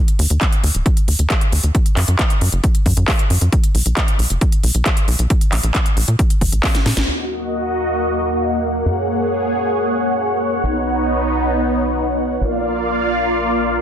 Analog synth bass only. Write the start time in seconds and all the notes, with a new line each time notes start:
0.19 D#2
0.30 D#2
0.64 D#2
0.75 D#1
1.08 D#2
1.19 D#2
1.52 D#2
1.64 D#2
1.97 F#2
2.08 F#2
2.41 F#2
2.53 F#1
2.86 F#2
2.97 F#2
3.30 F#2
3.41 F#2
3.75 B1
3.86 B1
4.19 B1
4.30 F#1
4.64 B1
4.75 B1
5.08 B1
5.19 B1
5.52 A#1
5.64 A#1
5.97 A#1
6.08 A#2
6.41 G#1
6.52 A#1
6.86 A#2
6.97 A#1
7.08 D#2
8.86 F#2
10.64 B1
12.41 A#1